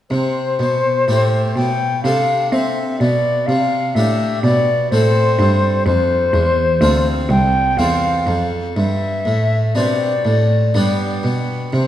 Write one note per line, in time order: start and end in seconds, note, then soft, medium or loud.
0.10 0.55 C3 soft
0.10 0.56 C3 medium
0.10 1.52 C5 medium
0.59 1.04 B2 soft
0.59 1.04 B2 medium
1.08 1.52 A2 medium
1.08 1.52 A2 soft
1.08 1.78 E4 soft
1.08 1.78 G4 soft
1.56 2.01 B2 medium
1.56 2.01 B2 soft
1.56 2.03 G5 medium
2.03 2.49 C3 medium
2.03 2.48 C3 soft
2.03 2.97 D4 soft
2.03 2.97 A4 soft
2.03 2.51 F5 medium
2.51 2.97 C4 medium
2.51 2.96 C4 soft
2.51 2.99 E5 medium
3.00 3.45 B2 medium
3.00 3.44 B2 soft
3.00 3.48 D5 medium
3.46 3.92 C3 medium
3.46 3.92 C3 soft
3.46 3.96 F5 medium
3.95 4.40 A2 medium
3.95 4.40 A2 soft
3.95 4.65 D4 soft
3.95 4.66 G4 soft
3.95 4.42 E5 medium
4.43 4.88 B2 medium
4.43 4.88 B2 soft
4.43 4.90 D5 medium
4.91 5.36 A2 medium
4.91 5.35 A2 soft
4.91 5.83 C4 soft
4.91 5.83 E4 soft
4.91 5.83 A4 soft
4.91 5.84 C5 medium
5.39 5.83 G2 medium
5.39 5.82 G2 soft
5.86 6.30 F2 medium
5.86 6.30 F2 soft
5.86 7.07 C5 medium
6.33 6.78 E2 medium
6.33 6.78 E2 soft
6.81 7.26 D2 medium
6.81 7.26 D2 soft
6.81 7.51 C4 soft
6.81 7.51 F4 soft
6.81 7.52 A4 soft
7.30 7.75 C2 medium
7.30 7.75 C2 soft
7.30 7.80 G5 medium
7.77 8.23 E2 medium
7.77 8.23 E2 soft
7.77 8.49 C4 soft
7.77 8.49 F4 soft
7.77 8.50 A4 soft
7.77 8.48 F5 medium
8.27 8.73 F2 medium
8.27 8.72 F2 soft
8.76 9.22 G2 medium
8.76 9.22 G2 soft
8.76 9.77 E5 medium
9.25 9.71 A2 soft
9.25 9.72 A2 medium
9.75 10.21 B2 soft
9.75 10.22 B2 soft
9.75 10.11 C4 soft
9.75 10.11 D4 soft
9.75 10.47 G4 soft
9.75 11.24 D5 medium
10.25 10.71 A2 soft
10.25 10.71 A2 medium
10.74 11.20 G2 soft
10.74 11.21 G2 medium
10.74 11.69 B3 soft
10.74 11.70 D4 soft
10.74 11.70 G4 soft
11.23 11.69 B2 soft
11.23 11.70 B2 medium
11.73 11.87 C3 soft
11.73 11.87 C3 medium
11.73 11.87 C5 medium